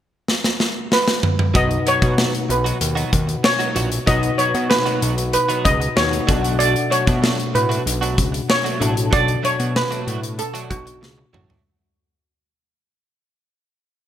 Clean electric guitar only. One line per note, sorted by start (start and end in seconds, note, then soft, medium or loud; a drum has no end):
1.54 1.70 F#3 medium
1.54 1.70 B3 medium
1.54 1.70 D#4 medium
1.54 1.69 F#4 medium
1.71 muted clean electric guitar stroke soft
1.86 1.98 F#3 medium
1.86 1.99 B3 medium
1.86 1.99 D#4 medium
1.86 1.99 F#4 medium
2.02 2.15 F#3 soft
2.02 2.15 B3 medium
2.02 2.14 D#4 medium
2.02 2.14 F#4 medium
2.18 2.33 F#3 medium
2.18 2.33 B3 medium
2.18 2.33 D#4 medium
2.18 2.32 F#4 medium
2.33 muted clean electric guitar stroke soft
2.49 muted clean electric guitar stroke soft
2.64 2.78 F#3 soft
2.64 2.78 B3 medium
2.64 2.77 D#4 medium
2.64 2.77 F#4 medium
2.81 muted clean electric guitar stroke soft
2.95 3.11 F#3 medium
2.95 3.11 B3 medium
2.95 3.11 D#4 medium
2.95 3.11 F#4 medium
3.12 muted clean electric guitar stroke soft
3.27 muted clean electric guitar stroke soft
3.43 muted clean electric guitar stroke soft
3.59 3.72 F#3 soft
3.59 3.72 B3 soft
3.59 3.72 D#4 medium
3.59 3.71 F#4 medium
3.75 3.91 F#3 medium
3.75 3.91 B3 medium
3.75 3.91 D#4 medium
3.75 3.90 F#4 medium
3.91 muted clean electric guitar stroke soft
4.06 4.22 F#3 medium
4.06 4.23 B3 medium
4.06 4.23 D#4 medium
4.06 4.23 F#4 medium
4.38 4.51 F#3 medium
4.38 4.51 B3 medium
4.38 4.51 D#4 medium
4.38 4.52 F#4 medium
4.54 4.67 F#3 soft
4.54 4.67 B3 soft
4.54 4.67 D#4 soft
4.54 4.66 F#4 medium
4.85 5.00 F#3 medium
4.85 5.01 B3 medium
4.85 5.01 D#4 medium
4.85 5.01 F#4 medium
5.01 5.14 F#3 medium
5.01 5.14 B3 medium
5.01 5.14 D#4 medium
5.01 5.14 F#4 medium
5.33 muted clean electric guitar stroke soft
5.49 5.64 F#3 medium
5.49 5.64 B3 medium
5.49 5.64 D#4 medium
5.49 5.64 F#4 medium
5.65 muted clean electric guitar stroke soft
5.80 muted clean electric guitar stroke soft
5.96 muted clean electric guitar stroke soft
6.12 muted clean electric guitar stroke soft
6.27 6.43 F#3 medium
6.27 6.43 A3 medium
6.27 6.43 D4 medium
6.27 6.42 F#4 medium
6.43 6.57 F#3 soft
6.43 6.56 A3 soft
6.43 6.56 D4 medium
6.43 6.56 F#4 medium
6.59 6.75 F#3 medium
6.59 6.75 A3 medium
6.59 6.74 D4 medium
6.59 6.74 F#4 medium
6.90 7.03 F#3 medium
6.90 7.03 A3 medium
6.90 7.04 D4 medium
6.90 7.04 F#4 medium
7.06 7.20 F#3 soft
7.06 7.19 A3 medium
7.06 7.19 D4 medium
7.06 7.19 F#4 medium
7.21 7.38 F#3 medium
7.21 7.38 A3 medium
7.21 7.38 D4 medium
7.21 7.37 F#4 medium
7.38 muted clean electric guitar stroke soft
7.53 muted clean electric guitar stroke soft
7.69 7.83 F#3 soft
7.69 7.83 A3 medium
7.69 7.82 D4 medium
7.69 7.82 F#4 medium
7.85 muted clean electric guitar stroke soft
8.01 8.16 F#3 medium
8.01 8.16 A3 medium
8.01 8.17 D4 medium
8.01 8.17 F#4 medium
8.17 muted clean electric guitar stroke soft
8.32 muted clean electric guitar stroke soft
8.49 muted clean electric guitar stroke soft
8.64 8.78 F#3 soft
8.64 8.77 A3 medium
8.64 8.77 D4 medium
8.64 8.77 F#4 medium
8.80 8.96 F#3 medium
8.80 8.96 A3 medium
8.80 8.95 D4 medium
8.80 8.94 F#4 medium
8.96 muted clean electric guitar stroke soft
9.11 9.27 F#3 medium
9.11 9.27 A3 medium
9.11 9.28 D4 medium
9.11 9.28 F#4 medium
9.43 9.55 F#3 medium
9.43 9.56 A3 medium
9.43 9.56 D4 medium
9.43 9.56 F#4 medium
9.59 9.72 F#3 soft
9.59 9.72 A3 soft
9.59 9.72 D4 soft
9.59 9.71 F#4 soft
9.91 10.05 F#3 medium
9.91 10.06 A3 medium
9.91 10.07 D4 medium
9.91 10.06 F#4 medium
10.07 10.19 F#3 medium
10.07 10.19 A3 medium
10.07 10.20 D4 medium
10.07 10.20 F#4 medium
10.22 muted clean electric guitar stroke soft
10.38 muted clean electric guitar stroke soft
10.54 10.69 F#3 medium
10.54 10.69 A3 medium
10.54 10.70 D4 medium
10.54 10.70 F#4 medium
10.86 muted clean electric guitar stroke soft
11.01 muted clean electric guitar stroke soft
11.18 muted clean electric guitar stroke soft
11.33 11.49 F#3 medium
11.33 11.49 A3 medium
11.33 11.49 D4 medium
11.33 11.48 F#4 medium
11.49 11.62 F#3 soft
11.49 11.62 A3 soft
11.49 11.62 D4 medium
11.49 11.61 F#4 medium